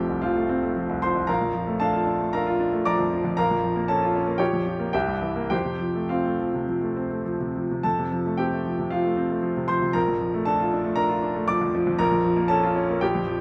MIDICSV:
0, 0, Header, 1, 2, 480
1, 0, Start_track
1, 0, Key_signature, -1, "major"
1, 0, Tempo, 520833
1, 1185, Time_signature, 4, 2, 24, 8
1, 4051, Tempo, 544959
1, 4531, Tempo, 580271
1, 6931, Tempo, 547945
1, 7411, Tempo, 514580
1, 12091, End_track
2, 0, Start_track
2, 0, Title_t, "Grand piano"
2, 0, Program_c, 0, 0
2, 0, Control_c, 0, 64, 127
2, 0, Note_on_c, 0, 29, 54
2, 0, Note_on_c, 0, 36, 37
2, 0, Note_on_c, 0, 53, 40
2, 0, Note_on_c, 0, 57, 44
2, 0, Note_on_c, 0, 60, 44
2, 0, Note_on_c, 0, 67, 46
2, 0, Note_on_c, 0, 69, 47
2, 0, Note_on_c, 0, 77, 46
2, 0, Note_on_c, 0, 79, 59
2, 0, Note_on_c, 0, 81, 60
2, 82, Note_off_c, 0, 36, 0
2, 82, Note_on_c, 0, 36, 37
2, 156, Note_off_c, 0, 53, 0
2, 178, Note_off_c, 0, 67, 0
2, 200, Note_off_c, 0, 77, 0
2, 200, Note_on_c, 0, 77, 55
2, 205, Note_off_c, 0, 79, 0
2, 206, Note_on_c, 0, 53, 44
2, 213, Note_on_c, 0, 65, 44
2, 213, Note_on_c, 0, 72, 43
2, 283, Note_off_c, 0, 36, 0
2, 335, Note_off_c, 0, 57, 0
2, 335, Note_on_c, 0, 57, 41
2, 406, Note_off_c, 0, 53, 0
2, 455, Note_off_c, 0, 60, 0
2, 455, Note_on_c, 0, 60, 48
2, 531, Note_off_c, 0, 57, 0
2, 580, Note_on_c, 0, 57, 43
2, 652, Note_off_c, 0, 60, 0
2, 701, Note_on_c, 0, 53, 43
2, 776, Note_off_c, 0, 57, 0
2, 822, Note_on_c, 0, 36, 44
2, 896, Note_off_c, 0, 53, 0
2, 907, Note_off_c, 0, 72, 0
2, 908, Note_off_c, 0, 65, 0
2, 938, Note_off_c, 0, 77, 0
2, 942, Note_on_c, 0, 84, 67
2, 947, Note_on_c, 0, 53, 46
2, 952, Note_on_c, 0, 72, 50
2, 1016, Note_off_c, 0, 36, 0
2, 1064, Note_on_c, 0, 36, 43
2, 1138, Note_off_c, 0, 53, 0
2, 1140, Note_off_c, 0, 29, 0
2, 1172, Note_off_c, 0, 72, 0
2, 1172, Note_on_c, 0, 82, 65
2, 1183, Note_off_c, 0, 84, 0
2, 1183, Note_on_c, 0, 70, 52
2, 1184, Note_on_c, 0, 34, 55
2, 1185, Note_off_c, 0, 36, 0
2, 1190, Note_on_c, 0, 77, 49
2, 1199, Control_c, 0, 64, 0
2, 1201, Note_off_c, 0, 69, 0
2, 1205, Note_off_c, 0, 81, 0
2, 1305, Note_on_c, 0, 41, 41
2, 1361, Control_c, 0, 64, 127
2, 1420, Note_on_c, 0, 53, 45
2, 1495, Note_off_c, 0, 41, 0
2, 1539, Note_on_c, 0, 57, 46
2, 1612, Note_off_c, 0, 53, 0
2, 1627, Note_off_c, 0, 70, 0
2, 1631, Note_off_c, 0, 77, 0
2, 1655, Note_off_c, 0, 82, 0
2, 1656, Note_on_c, 0, 81, 70
2, 1667, Note_on_c, 0, 62, 49
2, 1670, Note_on_c, 0, 69, 52
2, 1671, Note_on_c, 0, 77, 50
2, 1731, Note_off_c, 0, 57, 0
2, 1778, Note_on_c, 0, 65, 44
2, 1856, Note_off_c, 0, 62, 0
2, 1898, Note_on_c, 0, 62, 47
2, 1972, Note_off_c, 0, 65, 0
2, 2024, Note_on_c, 0, 57, 44
2, 2093, Note_off_c, 0, 62, 0
2, 2114, Note_off_c, 0, 69, 0
2, 2115, Note_off_c, 0, 77, 0
2, 2141, Note_off_c, 0, 81, 0
2, 2147, Note_on_c, 0, 82, 65
2, 2153, Note_on_c, 0, 62, 46
2, 2158, Note_on_c, 0, 77, 48
2, 2162, Note_on_c, 0, 70, 48
2, 2218, Note_off_c, 0, 57, 0
2, 2275, Note_on_c, 0, 65, 53
2, 2343, Note_off_c, 0, 62, 0
2, 2393, Note_on_c, 0, 62, 51
2, 2464, Note_off_c, 0, 65, 0
2, 2509, Note_on_c, 0, 57, 47
2, 2584, Note_off_c, 0, 62, 0
2, 2603, Note_off_c, 0, 77, 0
2, 2605, Note_off_c, 0, 70, 0
2, 2625, Note_off_c, 0, 82, 0
2, 2631, Note_on_c, 0, 86, 77
2, 2636, Note_on_c, 0, 53, 53
2, 2638, Note_on_c, 0, 82, 61
2, 2640, Note_on_c, 0, 74, 60
2, 2702, Note_off_c, 0, 57, 0
2, 2746, Note_on_c, 0, 41, 47
2, 2825, Note_off_c, 0, 53, 0
2, 2884, Note_on_c, 0, 53, 50
2, 2940, Note_off_c, 0, 41, 0
2, 2993, Note_on_c, 0, 41, 48
2, 3068, Note_off_c, 0, 53, 0
2, 3071, Note_off_c, 0, 34, 0
2, 3080, Note_off_c, 0, 82, 0
2, 3081, Note_off_c, 0, 74, 0
2, 3105, Note_on_c, 0, 82, 73
2, 3109, Note_off_c, 0, 86, 0
2, 3110, Note_off_c, 0, 41, 0
2, 3116, Note_on_c, 0, 77, 51
2, 3118, Note_on_c, 0, 34, 57
2, 3118, Note_on_c, 0, 70, 57
2, 3124, Control_c, 0, 64, 0
2, 3234, Note_on_c, 0, 41, 42
2, 3263, Control_c, 0, 64, 127
2, 3353, Note_on_c, 0, 53, 45
2, 3418, Note_off_c, 0, 41, 0
2, 3463, Note_on_c, 0, 58, 49
2, 3536, Note_off_c, 0, 53, 0
2, 3550, Note_off_c, 0, 70, 0
2, 3550, Note_off_c, 0, 77, 0
2, 3576, Note_off_c, 0, 82, 0
2, 3578, Note_on_c, 0, 81, 67
2, 3583, Note_on_c, 0, 61, 50
2, 3590, Note_on_c, 0, 69, 49
2, 3650, Note_off_c, 0, 58, 0
2, 3711, Note_on_c, 0, 65, 48
2, 3768, Note_off_c, 0, 61, 0
2, 3828, Note_on_c, 0, 61, 48
2, 3892, Note_off_c, 0, 65, 0
2, 3939, Note_on_c, 0, 58, 44
2, 4011, Note_off_c, 0, 61, 0
2, 4024, Note_off_c, 0, 69, 0
2, 4028, Note_off_c, 0, 34, 0
2, 4036, Note_on_c, 0, 79, 65
2, 4047, Note_on_c, 0, 34, 49
2, 4048, Note_on_c, 0, 67, 46
2, 4051, Note_off_c, 0, 81, 0
2, 4051, Note_on_c, 0, 73, 45
2, 4055, Note_off_c, 0, 58, 0
2, 4069, Control_c, 0, 64, 0
2, 4170, Note_on_c, 0, 41, 43
2, 4206, Control_c, 0, 64, 127
2, 4283, Note_on_c, 0, 53, 46
2, 4360, Note_off_c, 0, 41, 0
2, 4403, Note_on_c, 0, 58, 41
2, 4480, Note_off_c, 0, 53, 0
2, 4496, Note_off_c, 0, 67, 0
2, 4498, Note_off_c, 0, 73, 0
2, 4509, Note_off_c, 0, 79, 0
2, 4515, Note_off_c, 0, 34, 0
2, 4522, Note_on_c, 0, 79, 65
2, 4529, Note_off_c, 0, 58, 0
2, 4531, Note_on_c, 0, 36, 58
2, 4534, Note_on_c, 0, 67, 46
2, 4535, Note_on_c, 0, 76, 51
2, 4547, Control_c, 0, 64, 0
2, 4639, Note_on_c, 0, 43, 42
2, 4675, Control_c, 0, 64, 127
2, 4761, Note_on_c, 0, 52, 44
2, 4835, Note_off_c, 0, 43, 0
2, 4878, Note_on_c, 0, 58, 43
2, 4957, Note_off_c, 0, 52, 0
2, 4977, Note_off_c, 0, 67, 0
2, 4978, Note_off_c, 0, 76, 0
2, 4981, Note_off_c, 0, 79, 0
2, 4993, Note_on_c, 0, 79, 66
2, 4994, Note_off_c, 0, 36, 0
2, 5002, Note_on_c, 0, 67, 46
2, 5003, Note_on_c, 0, 41, 48
2, 5003, Note_on_c, 0, 72, 49
2, 5004, Note_off_c, 0, 58, 0
2, 5026, Control_c, 0, 64, 0
2, 5120, Note_on_c, 0, 48, 33
2, 5168, Control_c, 0, 64, 127
2, 5238, Note_on_c, 0, 53, 35
2, 5320, Note_off_c, 0, 48, 0
2, 5366, Note_on_c, 0, 57, 37
2, 5440, Note_off_c, 0, 53, 0
2, 5459, Note_off_c, 0, 67, 0
2, 5460, Note_off_c, 0, 72, 0
2, 5483, Note_on_c, 0, 77, 48
2, 5488, Note_off_c, 0, 79, 0
2, 5491, Note_on_c, 0, 60, 39
2, 5491, Note_on_c, 0, 72, 33
2, 5493, Note_on_c, 0, 65, 33
2, 5565, Note_off_c, 0, 57, 0
2, 5618, Note_on_c, 0, 57, 36
2, 5686, Note_off_c, 0, 60, 0
2, 5729, Note_on_c, 0, 53, 37
2, 5809, Note_off_c, 0, 57, 0
2, 5856, Note_on_c, 0, 48, 36
2, 5924, Note_off_c, 0, 53, 0
2, 5969, Note_on_c, 0, 53, 36
2, 6046, Note_off_c, 0, 48, 0
2, 6080, Note_on_c, 0, 57, 37
2, 6162, Note_off_c, 0, 53, 0
2, 6206, Note_on_c, 0, 60, 38
2, 6278, Note_off_c, 0, 57, 0
2, 6318, Note_on_c, 0, 57, 37
2, 6401, Note_off_c, 0, 60, 0
2, 6417, Note_off_c, 0, 72, 0
2, 6418, Note_off_c, 0, 65, 0
2, 6443, Note_on_c, 0, 53, 38
2, 6446, Note_off_c, 0, 77, 0
2, 6517, Note_off_c, 0, 57, 0
2, 6570, Note_on_c, 0, 48, 36
2, 6641, Note_off_c, 0, 53, 0
2, 6695, Note_on_c, 0, 53, 37
2, 6766, Note_off_c, 0, 48, 0
2, 6824, Note_on_c, 0, 48, 38
2, 6885, Note_off_c, 0, 53, 0
2, 6895, Note_off_c, 0, 41, 0
2, 6924, Note_on_c, 0, 81, 64
2, 6933, Note_on_c, 0, 41, 49
2, 6935, Note_on_c, 0, 69, 49
2, 6936, Note_off_c, 0, 48, 0
2, 6948, Control_c, 0, 64, 0
2, 7059, Note_on_c, 0, 48, 37
2, 7084, Control_c, 0, 64, 127
2, 7172, Note_on_c, 0, 53, 38
2, 7249, Note_off_c, 0, 48, 0
2, 7295, Note_on_c, 0, 57, 42
2, 7364, Note_off_c, 0, 53, 0
2, 7380, Note_off_c, 0, 69, 0
2, 7398, Note_on_c, 0, 79, 61
2, 7400, Note_on_c, 0, 60, 43
2, 7408, Note_off_c, 0, 81, 0
2, 7409, Note_on_c, 0, 67, 44
2, 7487, Note_off_c, 0, 57, 0
2, 7537, Note_on_c, 0, 57, 41
2, 7602, Note_off_c, 0, 60, 0
2, 7655, Note_on_c, 0, 53, 39
2, 7730, Note_off_c, 0, 57, 0
2, 7783, Note_on_c, 0, 48, 38
2, 7849, Note_off_c, 0, 53, 0
2, 7862, Note_off_c, 0, 67, 0
2, 7890, Note_off_c, 0, 79, 0
2, 7892, Note_on_c, 0, 77, 57
2, 7902, Note_on_c, 0, 53, 39
2, 7907, Note_on_c, 0, 65, 42
2, 7973, Note_off_c, 0, 48, 0
2, 8022, Note_on_c, 0, 57, 39
2, 8093, Note_off_c, 0, 53, 0
2, 8139, Note_on_c, 0, 60, 43
2, 8214, Note_off_c, 0, 57, 0
2, 8262, Note_on_c, 0, 57, 42
2, 8334, Note_off_c, 0, 60, 0
2, 8378, Note_on_c, 0, 53, 45
2, 8456, Note_off_c, 0, 57, 0
2, 8512, Note_on_c, 0, 48, 42
2, 8574, Note_off_c, 0, 53, 0
2, 8593, Note_off_c, 0, 65, 0
2, 8613, Note_on_c, 0, 84, 72
2, 8619, Note_on_c, 0, 53, 45
2, 8622, Note_off_c, 0, 77, 0
2, 8624, Note_on_c, 0, 72, 56
2, 8701, Note_off_c, 0, 48, 0
2, 8742, Note_on_c, 0, 48, 43
2, 8815, Note_off_c, 0, 53, 0
2, 8830, Note_off_c, 0, 41, 0
2, 8848, Note_off_c, 0, 72, 0
2, 8850, Note_on_c, 0, 82, 69
2, 8860, Note_off_c, 0, 84, 0
2, 8860, Note_on_c, 0, 34, 56
2, 8863, Note_on_c, 0, 70, 52
2, 8864, Note_off_c, 0, 48, 0
2, 8883, Control_c, 0, 64, 0
2, 8987, Note_on_c, 0, 41, 41
2, 9016, Control_c, 0, 64, 127
2, 9109, Note_on_c, 0, 53, 42
2, 9179, Note_off_c, 0, 41, 0
2, 9231, Note_on_c, 0, 57, 48
2, 9299, Note_off_c, 0, 53, 0
2, 9310, Note_off_c, 0, 70, 0
2, 9337, Note_off_c, 0, 82, 0
2, 9337, Note_on_c, 0, 81, 65
2, 9348, Note_on_c, 0, 62, 51
2, 9350, Note_on_c, 0, 69, 53
2, 9419, Note_off_c, 0, 57, 0
2, 9471, Note_on_c, 0, 65, 45
2, 9536, Note_off_c, 0, 62, 0
2, 9594, Note_on_c, 0, 62, 49
2, 9657, Note_off_c, 0, 65, 0
2, 9701, Note_on_c, 0, 57, 48
2, 9777, Note_off_c, 0, 62, 0
2, 9787, Note_off_c, 0, 69, 0
2, 9804, Note_on_c, 0, 82, 74
2, 9808, Note_on_c, 0, 62, 51
2, 9813, Note_off_c, 0, 81, 0
2, 9814, Note_on_c, 0, 70, 51
2, 9889, Note_off_c, 0, 57, 0
2, 9930, Note_on_c, 0, 65, 50
2, 10001, Note_off_c, 0, 62, 0
2, 10054, Note_on_c, 0, 62, 53
2, 10122, Note_off_c, 0, 65, 0
2, 10178, Note_on_c, 0, 57, 49
2, 10244, Note_off_c, 0, 62, 0
2, 10256, Note_off_c, 0, 70, 0
2, 10285, Note_off_c, 0, 82, 0
2, 10290, Note_on_c, 0, 86, 88
2, 10296, Note_on_c, 0, 53, 52
2, 10299, Note_on_c, 0, 74, 64
2, 10365, Note_off_c, 0, 57, 0
2, 10419, Note_on_c, 0, 41, 50
2, 10483, Note_off_c, 0, 53, 0
2, 10541, Note_on_c, 0, 53, 58
2, 10603, Note_off_c, 0, 41, 0
2, 10658, Note_on_c, 0, 41, 52
2, 10723, Note_off_c, 0, 53, 0
2, 10724, Note_off_c, 0, 34, 0
2, 10735, Note_off_c, 0, 74, 0
2, 10763, Note_off_c, 0, 86, 0
2, 10765, Note_on_c, 0, 82, 79
2, 10770, Note_off_c, 0, 41, 0
2, 10772, Note_on_c, 0, 34, 69
2, 10778, Note_on_c, 0, 70, 63
2, 10781, Control_c, 0, 64, 0
2, 10886, Note_on_c, 0, 41, 45
2, 10946, Control_c, 0, 64, 127
2, 11006, Note_on_c, 0, 53, 46
2, 11075, Note_off_c, 0, 41, 0
2, 11116, Note_on_c, 0, 58, 47
2, 11195, Note_off_c, 0, 53, 0
2, 11214, Note_off_c, 0, 70, 0
2, 11227, Note_on_c, 0, 81, 75
2, 11233, Note_on_c, 0, 61, 54
2, 11241, Note_off_c, 0, 82, 0
2, 11241, Note_on_c, 0, 69, 59
2, 11310, Note_off_c, 0, 58, 0
2, 11368, Note_on_c, 0, 65, 53
2, 11429, Note_off_c, 0, 61, 0
2, 11484, Note_on_c, 0, 61, 53
2, 11556, Note_off_c, 0, 65, 0
2, 11618, Note_on_c, 0, 58, 50
2, 11675, Note_off_c, 0, 61, 0
2, 11689, Note_off_c, 0, 69, 0
2, 11697, Note_off_c, 0, 34, 0
2, 11715, Note_off_c, 0, 81, 0
2, 11722, Note_on_c, 0, 79, 68
2, 11730, Note_off_c, 0, 58, 0
2, 11733, Note_on_c, 0, 34, 58
2, 11735, Note_on_c, 0, 67, 56
2, 11736, Control_c, 0, 64, 0
2, 11852, Note_on_c, 0, 41, 47
2, 11904, Control_c, 0, 64, 127
2, 11964, Note_on_c, 0, 53, 51
2, 12044, Note_off_c, 0, 41, 0
2, 12091, Note_off_c, 0, 34, 0
2, 12091, Note_off_c, 0, 53, 0
2, 12091, Note_off_c, 0, 67, 0
2, 12091, Note_off_c, 0, 79, 0
2, 12091, End_track
0, 0, End_of_file